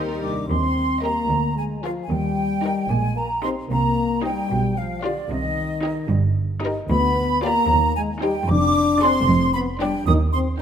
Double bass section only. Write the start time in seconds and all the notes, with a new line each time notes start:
Already playing: D#2
0.49 D#2
1.30 D2
2.10 D#2
2.90 A#1
3.70 C2
4.50 B1
5.29 C2
6.10 G1
6.90 D2
7.69 D#2
8.48 F1
9.27 F1
10.06 D#2